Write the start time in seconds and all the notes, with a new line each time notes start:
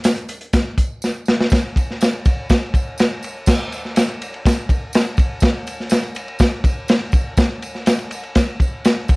0.04 snare, closed hi-hat, tambourine
0.16 closed hi-hat
0.28 closed hi-hat, tambourine
0.41 closed hi-hat
0.53 kick, snare, closed hi-hat, tambourine
0.78 kick, closed hi-hat, tambourine
1.02 snare, tambourine
1.26 snare, tambourine
1.41 snare
1.50 kick, snare, ride, tambourine
1.76 kick, ride, tambourine
1.91 snare
2.01 snare, ride, tambourine
2.25 kick, ride, tambourine
2.50 kick, snare, ride, tambourine
2.74 kick, ride, tambourine
2.98 snare, ride, tambourine
3.23 ride, tambourine
3.46 kick, snare, crash, tambourine
3.72 ride, tambourine
3.85 snare
3.96 snare, ride, tambourine
4.09 ride
4.22 ride, tambourine
4.34 ride
4.46 kick, snare, ride, tambourine
4.69 kick, ride, tambourine
4.93 snare, ride, tambourine
5.17 kick, ride, tambourine
5.40 kick, snare, ride, tambourine
5.67 ride, tambourine
5.80 snare
5.90 snare, ride, tambourine
6.03 ride
6.15 ride, tambourine
6.28 ride
6.39 kick, snare, ride, tambourine
6.64 kick, ride, tambourine
6.88 snare, ride, tambourine
7.12 kick, ride, tambourine
7.37 kick, snare, ride, tambourine
7.62 ride, tambourine
7.75 snare
7.86 snare, ride, tambourine
7.99 ride
8.11 ride, tambourine
8.23 ride
8.35 kick, snare, ride, tambourine
8.60 kick, ride, tambourine
8.85 snare, ride, tambourine
9.08 kick, ride, tambourine